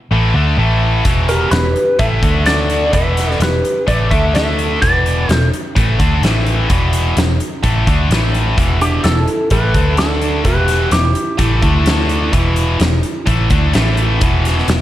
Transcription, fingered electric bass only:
0.11 A1
0.34 D2
0.57 A1
1.05 E1
1.51 E1
1.99 A1
2.23 D2
2.93 E1
3.40 E1
3.88 A1
4.11 D2
4.82 E1
5.29 E1
5.77 A1
6.00 D2
6.22 A1
6.70 E1
7.17 E1
7.64 A1
7.87 D2
8.09 A1
8.58 E1
9.04 E1
9.51 A1
9.75 D2
10.45 E1
10.92 E1
11.39 A1
11.63 D2
12.33 E1
12.80 E1
13.27 A1
13.50 D2
13.74 A1
14.22 E1
14.68 E1

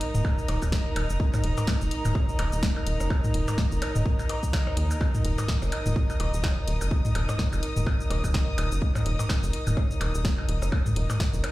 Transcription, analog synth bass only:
0.15 D#1
0.48 D#1
0.62 D#1
0.96 D#1
1.10 F#1
1.44 D#1
1.81 F1
2.05 D#1
2.39 D#1
2.53 D#1
2.87 D#1
3.00 F#1
3.34 D#1
3.72 F1
3.96 D#1
4.77 D#2
5.25 D#1
5.62 F1
5.86 D#1
6.20 D#1
6.34 D#1
6.67 D#1
6.81 F#1
7.15 D#1
7.53 F1
7.76 D#1
8.10 D#1
8.24 D#1
8.58 D#1
8.72 F#1
9.06 D#1
9.43 F1
9.67 D#1
10.01 D#1
10.15 D#1
10.48 D#1
10.62 F#1
10.96 D#1
11.34 F1

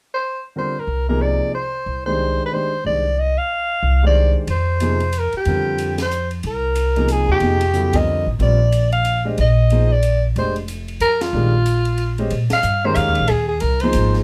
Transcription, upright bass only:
0.87 C2
1.86 C2
2.85 C2
3.83 C2
4.47 F2
5.33 muted upright bass stroke
5.46 F2
6.44 C2
7.28 D#2
7.41 F2
8.26 A1
8.39 A#1
9.38 A#1
10.36 F1
11.00 F2
11.33 A#1
12.31 A#2
12.51 muted upright bass stroke
12.63 G2
12.96 F2
13.08 D#2
13.19 A#1
13.29 D#2
13.62 C2
13.94 G#1

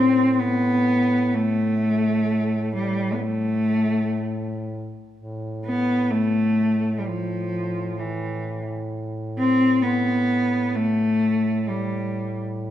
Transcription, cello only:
Already playing: C4
0.40 B3
1.34 A3
2.75 G3
3.14 B3
3.21 A3
5.65 B3
6.11 A3
6.99 G3
7.07 F3
7.99 E3
9.38 C4
9.82 B3
10.75 A3
11.69 G3

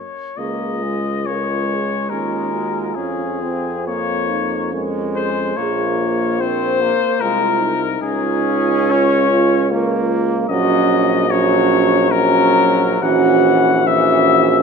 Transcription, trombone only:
0.38 A#3
0.83 G#3
1.27 G#3
2.96 C#4
3.42 C4
3.89 A#3
4.75 G#3
5.57 A#3
6.41 C4
6.82 A#3
7.22 G#3
8.03 C#4
9.72 A#3
10.50 F#3
11.30 F#3
12.12 F#3
13.02 E3
13.86 E3

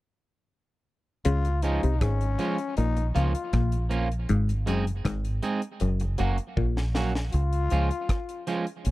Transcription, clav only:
1.25 C#3
1.83 C3
2.01 G#2
2.78 A#2
3.16 C#3
3.53 A#2
4.29 G#2
4.68 F#2
5.05 G#2
5.81 F#2
6.19 F#2
6.57 A#2

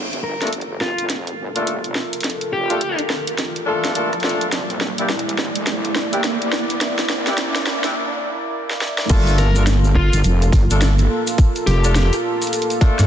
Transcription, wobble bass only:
Already playing: G1
0.81 G1
0.99 G1
1.10 F1
1.38 G1
1.56 G1
2.52 F1
3.84 G2
4.13 A#1
4.52 C2
5.39 C2
5.56 C2
5.67 A#1
5.95 C2
6.13 C2
7.10 A#1
7.56 C2
7.85 A#1
9.10 G1
10.13 G1
10.24 F1
10.53 G1
10.70 G1
11.67 F1
12.99 G2

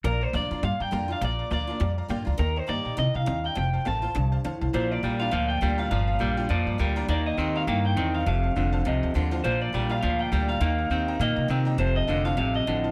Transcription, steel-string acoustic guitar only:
0.04 A#2
0.33 D3 A#3 D4 F4
0.51 D4 F4
0.63 F2
0.91 D3 A#3 D4 F4
1.08 D4 F4
1.22 A#2
1.50 D3 A#3 D4 F4
1.67 D4 F4
1.80 F2
2.08 D3 A#3 D4 F4
2.25 D4 F4
2.38 D#3
2.67 D#3 A#3 D#4 G4
2.97 A2
3.26 G2
3.55 F2
3.85 D#3 A3 C4 F4
4.02 C4 F4
4.15 G2
4.44 A2
4.74 A#2
5.03 D3 A#3 D4 F4
5.19 D4 F4
5.31 F2
5.61 D3 A#3 D4 F4
5.79 D4 F4
5.91 A#2
6.19 D3 A#3 D4 F4
6.37 D4 F4
6.49 F2
6.78 D3 A#3 D4 F4
6.96 D4 F4
7.09 D#3
7.37 D#3 A#3 D#4 G4
7.68 A2
7.97 G2
8.26 F2
8.56 A3 C4 F4
8.85 C3
9.14 D#3 A3 C4 F4
9.31 C4 F4
9.44 A#2
9.73 D3 A#3 D4 F4
9.89 D4 F4
10.03 F2
10.32 D3 A#3 D4 F4
10.49 D4 F4
10.61 D#3
10.91 D#3 A#3 D#4 G4
11.21 A#2
11.48 D#3 A#3 D#4 G4
11.65 D#4 G4
12.08 D#3 A3 C4 F4
12.25 C4 F4
12.37 G2
12.67 A2

